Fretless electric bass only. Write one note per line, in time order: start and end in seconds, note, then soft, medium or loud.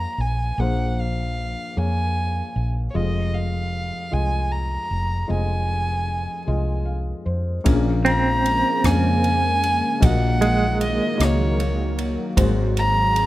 0.18 0.51 A#1 medium
0.58 1.54 A#1 medium
1.77 2.41 F2 medium
2.56 2.88 A#1 medium
2.95 3.91 F1 medium
4.13 4.77 C2 medium
4.91 5.23 F1 medium
5.30 6.26 F1 medium
6.48 7.12 C2 medium
7.26 7.58 F2 medium
7.66 8.62 A#1 loud
8.84 9.80 F2 medium
10.02 10.99 A#1 loud
11.20 12.16 C#2 medium
12.38 13.26 G#1 loud